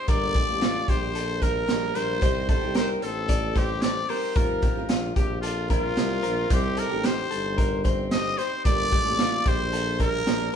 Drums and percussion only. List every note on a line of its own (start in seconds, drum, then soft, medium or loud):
0.08 kick loud
0.08 closed hi-hat medium
0.35 kick loud
0.35 closed hi-hat medium
0.61 snare loud
0.61 closed hi-hat medium
0.88 kick medium
0.88 closed hi-hat medium
1.15 closed hi-hat medium
1.42 kick medium
1.42 closed hi-hat medium
1.68 snare loud
1.68 closed hi-hat medium
1.95 closed hi-hat medium
2.22 kick loud
2.22 closed hi-hat medium
2.49 kick loud
2.49 closed hi-hat medium
2.74 snare loud
2.74 closed hi-hat medium
3.02 closed hi-hat medium
3.29 kick medium
3.29 closed hi-hat medium
3.56 kick medium
3.56 closed hi-hat medium
3.82 snare loud
3.82 closed hi-hat medium
4.09 open hi-hat medium
4.36 kick loud
4.36 closed hi-hat medium
4.62 kick medium
4.62 closed hi-hat medium
4.89 snare loud
4.89 closed hi-hat medium
5.16 kick medium
5.16 closed hi-hat medium
5.43 closed hi-hat medium
5.70 kick medium
5.70 closed hi-hat medium
5.97 snare medium
5.97 closed hi-hat medium
6.23 closed hi-hat medium
6.50 kick loud
6.50 closed hi-hat medium
6.77 closed hi-hat medium
7.04 snare loud
7.04 closed hi-hat medium
7.31 closed hi-hat medium
7.58 kick medium
7.58 closed hi-hat medium
7.85 kick medium
7.85 closed hi-hat medium
8.11 snare medium
8.11 closed hi-hat medium
8.38 closed hi-hat medium
8.65 kick loud
8.65 closed hi-hat medium
8.92 kick medium
8.92 closed hi-hat medium
9.18 snare loud
9.18 closed hi-hat medium
9.45 kick loud
9.45 closed hi-hat medium
9.73 closed hi-hat medium
10.00 kick medium
10.00 closed hi-hat medium
10.27 snare loud
10.27 closed hi-hat medium